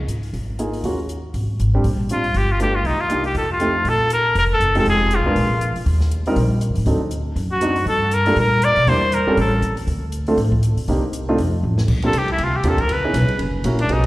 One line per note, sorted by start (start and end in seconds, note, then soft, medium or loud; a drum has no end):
0.08 0.31 G#2 medium
0.08 closed hi-hat medium
0.23 open hi-hat soft
0.33 0.81 G#1 medium
0.33 kick soft
0.33 open hi-hat soft
0.59 0.83 A#3 medium
0.59 0.84 D#4 soft
0.59 0.84 F4 soft
0.59 0.84 G#4 medium
0.59 closed hi-hat soft
0.73 open hi-hat soft
0.84 1.31 D#2 medium
0.84 0.97 A#3 soft
0.84 0.98 C#4 soft
0.84 0.97 F4 medium
0.84 0.98 F#4 medium
0.84 kick soft
0.84 open hi-hat soft
1.09 closed hi-hat soft
1.34 1.57 G#1 medium
1.34 kick soft
1.34 open hi-hat soft
1.60 1.83 G#1 medium
1.60 closed hi-hat soft
1.74 1.84 G3 medium
1.74 1.83 C4 medium
1.74 1.84 D4 medium
1.74 1.84 G4 medium
1.84 2.32 A#1 medium
1.84 kick soft
1.84 open hi-hat soft
2.09 2.23 G3 soft
2.09 2.23 C4 soft
2.09 2.23 D4 soft
2.09 2.23 F4 medium
2.09 2.39 F4 medium
2.09 closed hi-hat medium
2.24 open hi-hat soft
2.34 2.82 G1 medium
2.34 2.53 G4 medium
2.34 kick soft
2.34 open hi-hat soft
2.51 2.61 F4 medium
2.60 2.73 A3 medium
2.60 2.73 B3 medium
2.60 2.73 D4 medium
2.60 2.73 F4 medium
2.60 2.77 G4 medium
2.60 closed hi-hat soft
2.75 2.88 F4 medium
2.84 3.32 C2 medium
2.84 3.02 D#4 medium
2.84 kick soft
2.84 open hi-hat soft
3.01 3.25 F4 medium
3.10 3.23 A#3 medium
3.10 3.23 D4 medium
3.10 3.23 D#4 medium
3.10 3.23 G4 medium
3.10 closed hi-hat soft
3.24 3.35 G4 medium
3.24 open hi-hat soft
3.35 3.82 F2 medium
3.35 3.50 A4 medium
3.35 kick soft
3.35 open hi-hat soft
3.52 3.90 F4 medium
3.60 3.73 A3 medium
3.60 3.73 C4 medium
3.60 3.73 D#4 medium
3.60 3.73 G4 medium
3.60 closed hi-hat soft
3.85 4.33 A#1 medium
3.85 4.12 A4 medium
3.85 kick soft
3.85 open hi-hat soft
4.10 4.35 A#4 medium
4.10 closed hi-hat medium
4.35 4.59 F1 medium
4.35 4.44 A#4 medium
4.35 kick soft
4.35 open hi-hat soft
4.53 4.75 A4 medium
4.60 4.83 F#1 medium
4.60 closed hi-hat soft
4.75 5.09 G#3 medium
4.75 5.08 C4 medium
4.75 5.09 D#4 medium
4.75 5.09 F4 medium
4.75 5.09 G4 medium
4.75 4.87 A4 medium
4.75 open hi-hat soft
4.85 5.16 F1 medium
4.85 kick soft
4.85 open hi-hat soft
4.90 5.17 G#4 medium
5.11 closed hi-hat medium
5.15 5.77 F4 medium
5.19 5.27 C2 medium
5.26 5.35 F2 medium
5.26 5.35 G#3 medium
5.26 5.35 B3 medium
5.26 5.35 D4 medium
5.26 5.35 F4 medium
5.26 5.35 A#4 medium
5.36 5.73 A#1 medium
5.36 kick soft
5.36 open hi-hat medium
5.61 closed hi-hat medium
5.75 muted upright bass stroke soft
5.75 open hi-hat soft
5.86 6.33 D#2 medium
5.86 kick soft
5.86 open hi-hat medium
6.00 snare soft
6.12 closed hi-hat medium
6.26 6.36 G3 medium
6.26 6.36 C4 medium
6.26 6.36 D#4 medium
6.26 6.36 F4 medium
6.26 6.36 A#4 medium
6.26 open hi-hat soft
6.36 6.67 A#1 medium
6.36 kick soft
6.36 open hi-hat soft
6.61 closed hi-hat medium
6.69 6.77 F2 soft
6.75 6.85 A2 medium
6.75 open hi-hat soft
6.86 7.34 D2 medium
6.86 6.99 F#3 medium
6.86 6.99 C4 soft
6.86 6.99 D4 medium
6.86 7.00 D#4 medium
6.86 7.00 A4 medium
6.86 kick soft
6.86 open hi-hat medium
7.11 closed hi-hat medium
7.36 7.84 F#2 medium
7.36 kick soft
7.36 open hi-hat soft
7.52 7.85 F#4 medium
7.61 7.74 F#3 medium
7.61 7.75 C4 medium
7.61 7.75 D4 medium
7.61 7.75 D#4 medium
7.61 7.75 F#4 medium
7.61 closed hi-hat medium
7.76 open hi-hat soft
7.86 8.34 G2 medium
7.86 8.16 A4 medium
7.86 kick soft
7.86 open hi-hat soft
8.11 8.38 A#4 medium
8.11 closed hi-hat medium
8.26 8.36 G3 medium
8.26 8.36 A#3 medium
8.26 8.36 D4 medium
8.26 8.36 F4 medium
8.26 8.36 A4 medium
8.26 open hi-hat soft
8.36 8.73 A#2 medium
8.36 8.66 A#4 loud
8.36 kick soft
8.36 open hi-hat soft
8.62 8.90 D5 loud
8.62 closed hi-hat medium
8.76 8.86 B2 medium
8.76 open hi-hat soft
8.87 9.24 E2 medium
8.87 9.00 G3 medium
8.87 9.00 A#3 medium
8.87 9.00 D4 medium
8.87 9.00 E4 medium
8.87 9.00 A#4 medium
8.87 9.16 C5 loud
8.87 kick soft
8.87 open hi-hat medium
9.12 9.38 A#4 medium
9.12 closed hi-hat medium
9.27 9.36 G3 medium
9.27 9.36 C4 medium
9.27 9.36 C#4 medium
9.27 9.36 F4 medium
9.27 9.37 A4 medium
9.27 muted upright bass stroke soft
9.37 9.60 A1 medium
9.37 9.76 A4 medium
9.37 kick soft
9.37 open hi-hat soft
9.62 9.85 D#2 medium
9.62 closed hi-hat medium
9.77 open hi-hat soft
9.87 10.35 D2 medium
9.87 kick soft
9.87 open hi-hat medium
10.12 closed hi-hat medium
10.27 10.37 A3 medium
10.27 10.37 C4 medium
10.27 10.37 D4 medium
10.27 10.37 F4 medium
10.27 10.37 A4 medium
10.27 open hi-hat soft
10.37 10.74 A2 medium
10.37 kick soft
10.37 open hi-hat medium
10.52 kick medium
10.63 closed hi-hat medium
10.77 muted upright bass stroke soft
10.77 open hi-hat soft
10.88 11.36 C2 medium
10.88 11.01 A#3 medium
10.88 11.01 C4 medium
10.88 11.01 D4 medium
10.88 11.02 D#4 medium
10.88 11.02 G4 medium
10.88 kick soft
10.88 open hi-hat soft
11.13 closed hi-hat medium
11.29 11.38 A3 medium
11.29 11.38 C4 medium
11.29 11.38 D4 medium
11.29 11.38 D#4 medium
11.29 11.38 F4 medium
11.38 11.61 F2 medium
11.38 kick soft
11.38 open hi-hat medium
11.63 11.87 A1 medium
11.78 snare medium
11.88 12.13 A#1 medium
11.88 kick medium
11.88 crash medium
12.02 12.13 A#3 medium
12.02 12.13 C4 medium
12.02 12.13 D4 medium
12.02 12.13 F4 medium
12.02 12.13 G4 medium
12.02 12.19 A4 medium
12.02 ride soft
12.13 12.38 C2 medium
12.13 kick soft
12.13 hi-hat pedal medium
12.13 ride medium
12.18 12.30 G4 medium
12.28 12.45 E4 medium
12.28 ride soft
12.38 12.63 D2 medium
12.38 kick soft
12.38 ride medium
12.44 12.58 F4 medium
12.56 12.70 G4 medium
12.64 12.77 D#2 medium
12.64 12.77 A#3 medium
12.64 12.77 C4 medium
12.64 12.77 D4 medium
12.64 12.77 F4 medium
12.64 12.78 G4 medium
12.64 kick soft
12.64 hi-hat pedal medium
12.64 ride medium
12.68 12.82 A4 medium
12.78 12.94 A#4 medium
12.78 muted upright bass stroke soft
12.78 kick soft
12.78 ride soft
12.89 13.13 C#2 medium
12.89 kick soft
12.89 ride medium
12.93 13.41 B4 medium
13.04 13.13 B3 medium
13.04 13.13 C#4 medium
13.04 13.13 D#4 medium
13.04 13.13 E4 medium
13.04 13.14 G#4 medium
13.14 13.27 B1 medium
13.14 kick soft
13.14 hi-hat pedal medium
13.14 ride medium
13.28 muted upright bass stroke soft
13.28 ride soft
13.39 13.63 F#1 medium
13.39 kick soft
13.39 ride medium
13.64 13.88 A#1 medium
13.64 13.78 A#3 medium
13.64 13.78 C#4 medium
13.64 13.78 E4 medium
13.64 13.78 F#4 medium
13.64 13.78 A#4 medium
13.64 kick soft
13.64 hi-hat pedal soft
13.64 ride medium
13.79 13.94 D4 medium
13.79 ride medium
13.89 14.06 B1 medium
13.89 14.02 B3 soft
13.89 14.02 C#4 soft
13.89 14.02 D#4 soft
13.89 14.05 D#4 medium
13.89 14.03 F#4 medium
13.89 14.03 G#4 medium
13.89 kick soft
13.89 ride medium